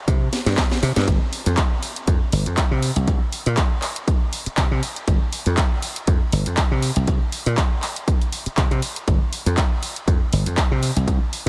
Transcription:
0.08 0.27 C3 medium
0.08 kick loud
0.08 closed hi-hat medium
0.33 snare medium
0.33 open hi-hat loud
0.46 0.55 G2 loud
0.46 snare medium
0.46 closed hi-hat medium
0.57 kick loud
0.57 snare medium
0.57 clap loud
0.57 closed hi-hat medium
0.71 snare medium
0.83 0.93 C3 medium
0.83 open hi-hat loud
0.96 1.05 G2 loud
0.96 snare medium
0.96 closed hi-hat medium
1.08 1.18 G1 loud
1.08 kick loud
1.08 closed hi-hat medium
1.33 open hi-hat loud
1.46 1.55 F2 medium
1.46 closed hi-hat medium
1.57 kick loud
1.57 clap loud
1.57 closed hi-hat medium
1.83 open hi-hat loud
1.96 closed hi-hat medium
2.07 2.18 F2 medium
2.07 kick loud
2.07 closed hi-hat medium
2.32 2.43 G1 medium
2.32 open hi-hat loud
2.46 2.55 F2 medium
2.46 closed hi-hat medium
2.57 kick loud
2.57 clap loud
2.57 closed hi-hat medium
2.71 2.90 C3 medium
2.83 open hi-hat loud
2.96 3.05 C2 medium
2.96 closed hi-hat medium
3.07 3.18 C2 loud
3.07 kick loud
3.07 closed hi-hat medium
3.33 open hi-hat loud
3.46 3.55 A#2 medium
3.46 closed hi-hat medium
3.57 kick loud
3.57 clap loud
3.57 closed hi-hat medium
3.82 clap medium
3.82 open hi-hat loud
3.96 closed hi-hat medium
4.08 kick loud
4.08 closed hi-hat medium
4.33 open hi-hat loud
4.46 muted slap bass stroke soft
4.46 closed hi-hat medium
4.57 4.68 C3 loud
4.57 kick loud
4.57 clap loud
4.57 closed hi-hat medium
4.71 4.80 C3 medium
4.83 open hi-hat loud
4.96 closed hi-hat medium
5.08 5.18 G1 loud
5.08 kick loud
5.08 closed hi-hat medium
5.33 open hi-hat loud
5.46 5.55 F2 medium
5.46 closed hi-hat medium
5.57 kick loud
5.57 clap loud
5.57 closed hi-hat medium
5.82 open hi-hat loud
5.96 closed hi-hat medium
6.07 6.18 F2 medium
6.07 kick loud
6.07 closed hi-hat medium
6.32 6.43 G1 medium
6.32 open hi-hat loud
6.46 6.55 F2 medium
6.46 closed hi-hat medium
6.57 kick loud
6.57 clap loud
6.57 closed hi-hat medium
6.71 6.90 C3 medium
6.83 open hi-hat loud
6.96 7.05 C2 medium
6.96 closed hi-hat medium
7.08 7.18 C2 loud
7.08 kick loud
7.08 closed hi-hat medium
7.32 open hi-hat loud
7.46 7.55 A#2 medium
7.46 closed hi-hat medium
7.57 kick loud
7.57 clap loud
7.57 closed hi-hat medium
7.82 clap medium
7.82 open hi-hat loud
7.96 closed hi-hat medium
8.08 kick loud
8.08 closed hi-hat medium
8.22 closed hi-hat soft
8.33 open hi-hat loud
8.46 muted slap bass stroke soft
8.46 closed hi-hat soft
8.57 8.68 C3 loud
8.57 kick loud
8.57 clap loud
8.57 closed hi-hat medium
8.71 8.80 C3 medium
8.71 closed hi-hat soft
8.82 open hi-hat loud
8.96 closed hi-hat medium
9.08 9.18 G1 loud
9.08 kick loud
9.08 closed hi-hat medium
9.33 open hi-hat loud
9.46 9.55 F2 medium
9.46 closed hi-hat medium
9.57 kick loud
9.57 clap loud
9.57 closed hi-hat medium
9.83 open hi-hat loud
9.96 closed hi-hat medium
10.08 10.18 F2 medium
10.08 kick loud
10.08 closed hi-hat medium
10.33 10.43 G1 medium
10.33 open hi-hat loud
10.46 10.55 F2 medium
10.46 closed hi-hat medium
10.57 kick loud
10.57 clap loud
10.57 closed hi-hat medium
10.71 10.90 C3 medium
10.83 open hi-hat loud
10.96 11.05 C2 medium
10.96 closed hi-hat medium
11.08 11.18 C2 loud
11.08 kick loud
11.08 closed hi-hat medium
11.33 open hi-hat loud

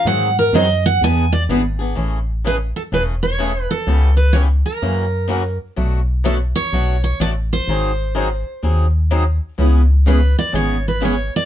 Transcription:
0.05 0.52 G#2 medium
0.05 0.28 D#3 medium
0.05 0.28 F#3 medium
0.05 0.28 C4 medium
0.05 0.28 D#4 medium
0.05 0.28 G#4 medium
0.05 0.36 F#5 loud
0.39 0.54 A#4 medium
0.53 0.99 F#2 loud
0.53 0.65 D#3 medium
0.53 0.65 F#3 medium
0.53 0.66 C4 medium
0.53 0.66 D#4 loud
0.53 0.66 G#4 loud
0.53 0.84 D#5 loud
0.86 1.01 F#5 loud
1.01 1.47 E2 medium
1.01 1.24 E3 medium
1.01 1.24 B3 medium
1.01 1.24 D4 medium
1.01 1.24 G#4 medium
1.01 1.24 B4 medium
1.01 1.32 G#5 loud
1.32 1.42 D5 loud
1.49 1.95 G#1 medium
1.49 1.60 E3 medium
1.49 1.61 B3 medium
1.49 1.61 D4 loud
1.49 1.61 G#4 loud
1.49 1.62 B4 medium
1.79 1.96 B3 soft
1.79 1.96 D4 medium
1.79 1.95 G#4 medium
1.95 2.73 A1 medium
1.95 2.17 C#3 medium
1.95 2.18 E3 medium
1.95 2.18 A3 medium
1.95 2.18 C#4 medium
1.95 2.18 G#4 medium
2.44 2.56 C#3 medium
2.44 2.56 E3 medium
2.44 2.56 A3 medium
2.44 2.57 C#4 medium
2.44 2.56 G#4 loud
2.44 2.55 B4 medium
2.76 2.81 A4 medium
2.92 3.68 E1 medium
2.92 3.14 C#3 medium
2.92 3.14 E3 medium
2.92 3.14 A3 medium
2.92 3.14 C#4 medium
2.92 3.14 G#4 medium
2.92 3.02 B4 medium
3.23 3.72 C#5 medium
3.39 3.51 C#3 medium
3.39 3.51 E3 medium
3.39 3.51 A3 medium
3.39 3.51 C#4 medium
3.39 3.51 G#4 loud
3.71 4.16 A4 medium
3.87 4.63 C#2 medium
3.87 4.09 C#3 medium
3.87 4.09 E3 medium
3.87 4.09 B3 medium
3.87 4.09 C#4 medium
3.87 4.09 G4 medium
4.17 4.35 B4 medium
4.33 4.46 C#3 medium
4.33 4.46 E3 medium
4.33 4.46 B3 medium
4.33 4.46 C#4 medium
4.33 4.46 G4 medium
4.33 4.41 C#5 medium
4.66 5.57 A#4 medium
4.82 5.59 F#2 medium
4.82 5.04 C#3 medium
4.82 5.04 E3 medium
4.82 5.04 A#3 medium
4.82 5.04 C#4 medium
4.82 5.04 F#4 medium
5.28 5.40 C#3 medium
5.28 5.41 E3 medium
5.28 5.41 A#3 loud
5.28 5.41 C#4 medium
5.28 5.41 F#4 loud
5.76 6.54 B1 medium
5.76 5.99 B2 medium
5.76 5.99 F#3 medium
5.76 5.99 A3 medium
5.76 5.99 D4 medium
5.76 5.99 F#4 medium
6.24 6.36 B2 medium
6.24 6.37 F#3 medium
6.24 6.37 A3 medium
6.24 6.37 D4 loud
6.24 6.37 F#4 medium
6.24 6.34 A4 medium
6.56 7.03 C#5 medium
6.73 7.13 B1 medium
6.73 6.95 B2 medium
6.73 6.95 F#3 medium
6.73 6.95 A3 medium
6.73 6.95 D4 medium
6.73 6.95 F#4 medium
7.04 7.21 C#5 medium
7.20 7.61 A1 medium
7.20 7.32 B2 medium
7.20 7.32 F#3 medium
7.20 7.32 A3 medium
7.20 7.32 D4 loud
7.20 7.33 F#4 medium
7.20 7.29 D5 loud
7.53 8.91 C5 medium
7.68 8.44 G#1 medium
7.68 7.90 D#3 medium
7.68 7.91 F#3 medium
7.68 7.91 C4 medium
7.68 7.91 D#4 medium
7.68 7.91 G#4 medium
8.15 8.27 D#3 medium
8.15 8.27 F#3 medium
8.15 8.27 C4 medium
8.15 8.27 D#4 medium
8.15 8.27 G#4 medium
8.63 9.40 D#2 medium
8.63 8.85 D#3 soft
8.63 8.85 F#3 medium
8.63 8.85 C4 medium
8.63 8.86 D#4 medium
8.63 8.86 G#4 medium
9.11 9.23 D#3 medium
9.11 9.23 F#3 medium
9.11 9.23 C4 loud
9.11 9.23 D#4 medium
9.11 9.23 G#4 loud
9.58 10.35 C#2 loud
9.58 9.80 C#3 medium
9.58 9.80 E3 medium
9.58 9.81 G#3 medium
9.58 9.81 B3 medium
9.58 9.81 C#4 medium
9.58 9.81 E4 medium
9.58 9.81 G#4 medium
10.06 10.18 C#3 medium
10.06 10.18 E3 medium
10.06 10.18 G#3 medium
10.06 10.18 B3 medium
10.06 10.19 C#4 medium
10.06 10.19 E4 medium
10.06 10.19 G#4 medium
10.06 10.38 B4 medium
10.38 10.54 D5 loud
10.52 11.30 G#1 medium
10.52 10.75 C#3 medium
10.52 10.76 E3 medium
10.52 10.76 G#3 medium
10.52 10.76 B3 medium
10.52 10.76 C#4 medium
10.52 10.76 E4 medium
10.52 10.76 G#4 medium
10.52 10.87 C#5 medium
10.88 11.04 B4 medium
11.01 11.13 C#3 medium
11.01 11.14 E3 loud
11.01 11.13 G#3 medium
11.01 11.14 B3 medium
11.01 11.14 C#4 loud
11.01 11.13 E4 medium
11.01 11.14 G#4 medium
11.05 11.35 C#5 medium
11.36 11.45 D5 medium

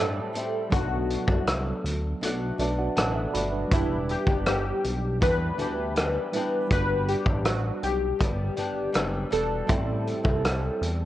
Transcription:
0.00 0.20 G2 medium
0.00 0.32 A2 medium
0.00 0.33 G3 medium
0.00 0.66 G3 medium
0.00 0.34 C4 medium
0.00 0.67 C4 soft
0.00 0.35 E4 medium
0.00 0.68 E4 medium
0.00 0.69 A4 medium
0.00 0.74 A4 medium
0.33 0.71 A2 soft
0.33 0.72 G3 medium
0.33 0.71 C4 medium
0.33 0.72 E4 medium
0.33 closed hi-hat medium
0.70 1.17 B1 loud
0.70 1.27 B2 medium
0.70 3.66 F#3 medium
0.70 1.28 A3 medium
0.70 3.67 B3 medium
0.70 1.28 D4 medium
0.70 2.56 D4 medium
0.70 1.43 F#4 medium
0.70 1.26 F#4 medium
0.70 kick medium
0.70 closed hi-hat medium
0.75 2.57 A4 medium
1.10 closed hi-hat soft
1.27 1.73 C2 medium
1.27 2.21 A3 soft
1.27 2.23 D4 soft
1.27 2.21 F#4 medium
1.27 kick medium
1.47 cross-stick medium
1.47 closed hi-hat medium
1.84 2.14 D2 medium
1.84 closed hi-hat medium
2.21 2.52 B1 medium
2.21 2.57 B2 medium
2.21 2.59 A3 medium
2.21 2.60 D4 medium
2.21 2.60 F#4 medium
2.21 closed hi-hat medium
2.58 2.89 B1 medium
2.58 2.95 B2 medium
2.58 2.96 A3 medium
2.58 2.78 D4 soft
2.58 2.97 D4 medium
2.58 2.98 F#4 medium
2.58 2.78 B4 medium
2.58 2.77 D5 medium
2.58 closed hi-hat soft
2.78 2.97 F#4 soft
2.78 2.96 D5 medium
2.78 2.95 F#5 medium
2.96 3.27 A1 medium
2.96 3.33 B2 medium
2.96 3.34 A3 medium
2.96 3.35 D4 medium
2.96 3.36 F#4 medium
2.96 3.15 A4 soft
2.96 3.14 F#5 medium
2.96 3.32 A5 medium
2.96 cross-stick medium
2.96 closed hi-hat medium
3.15 3.33 E5 medium
3.34 3.65 G1 medium
3.34 3.72 B2 medium
3.34 3.72 A3 medium
3.34 3.72 D4 medium
3.34 3.52 F#4 medium
3.34 3.73 F#4 medium
3.34 3.52 D5 medium
3.34 3.69 B5 medium
3.34 closed hi-hat medium
3.52 3.69 D4 medium
3.52 3.72 B4 medium
3.68 4.17 E1 loud
3.68 6.28 G3 medium
3.68 6.29 D4 soft
3.68 6.30 E4 soft
3.68 kick loud
3.68 closed hi-hat medium
3.72 4.28 E3 medium
3.72 4.28 B3 medium
3.72 4.28 D4 medium
3.72 4.11 E4 medium
3.72 4.26 G4 medium
4.09 4.47 G4 medium
4.09 closed hi-hat soft
4.27 4.72 G1 loud
4.27 5.22 B3 soft
4.27 5.23 D4 soft
4.27 5.24 G4 soft
4.27 kick medium
4.46 5.18 G4 medium
4.46 cross-stick medium
4.46 closed hi-hat medium
4.84 5.23 B1 medium
4.84 closed hi-hat soft
5.21 5.51 E2 medium
5.21 5.57 E3 medium
5.21 5.59 B3 medium
5.21 5.60 D4 medium
5.21 5.60 G4 medium
5.21 6.71 B4 loud
5.21 kick medium
5.21 closed hi-hat medium
5.58 6.18 D2 medium
5.58 5.95 E3 medium
5.58 5.96 B3 medium
5.58 5.97 D4 medium
5.58 5.98 G4 medium
5.58 closed hi-hat soft
5.96 6.32 E3 medium
5.96 6.34 B3 medium
5.96 6.35 D4 medium
5.96 6.35 G4 medium
5.96 cross-stick medium
5.96 closed hi-hat medium
6.33 6.71 E3 medium
6.33 6.67 G3 soft
6.33 6.71 B3 medium
6.33 6.68 D4 soft
6.33 6.72 D4 medium
6.33 6.71 E4 soft
6.33 6.71 B4 medium
6.33 closed hi-hat medium
6.37 6.73 G4 medium
6.68 7.16 G1 loud
6.68 9.64 G3 medium
6.68 7.27 G3 medium
6.68 9.65 D4 medium
6.68 9.66 F#5 soft
6.68 kick medium
6.68 closed hi-hat medium
6.72 7.28 B3 medium
6.72 7.28 D4 medium
6.72 7.28 F#4 medium
6.72 7.07 B4 loud
6.72 9.67 B4 medium
7.08 7.47 G4 medium
7.08 closed hi-hat soft
7.26 7.71 A1 medium
7.26 8.21 D4 soft
7.26 kick medium
7.31 8.19 B3 soft
7.45 7.84 F#4 medium
7.45 cross-stick medium
7.45 closed hi-hat medium
7.83 8.13 B1 medium
7.83 9.37 G4 medium
7.83 closed hi-hat soft
8.19 8.50 G1 medium
8.19 8.55 G3 medium
8.19 8.57 B3 medium
8.19 8.58 D4 medium
8.19 kick medium
8.19 closed hi-hat medium
8.57 8.88 G1 medium
8.57 8.91 G3 medium
8.57 8.93 B3 medium
8.57 8.94 D4 medium
8.57 closed hi-hat soft
8.92 9.25 F#1 loud
8.92 9.29 G3 medium
8.92 9.31 B3 medium
8.92 9.32 D4 medium
8.92 cross-stick medium
8.92 closed hi-hat medium
9.31 9.62 E1 medium
9.31 9.67 G3 soft
9.31 9.69 B3 soft
9.31 9.69 D4 medium
9.31 9.71 F#4 medium
9.31 11.05 A4 medium
9.31 closed hi-hat medium
9.67 10.14 A1 loud
9.67 10.25 A2 medium
9.67 11.05 G3 medium
9.67 10.25 G3 medium
9.67 11.05 C4 medium
9.67 10.24 C4 medium
9.67 10.22 E4 medium
9.67 11.05 E4 medium
9.67 kick medium
9.67 closed hi-hat medium
9.72 11.05 A4 medium
10.07 closed hi-hat soft
10.24 10.70 C2 medium
10.24 11.05 G3 soft
10.24 11.05 C4 soft
10.24 11.05 E4 medium
10.24 kick medium
10.45 cross-stick medium
10.45 closed hi-hat medium
10.81 11.05 E2 medium
10.81 closed hi-hat soft

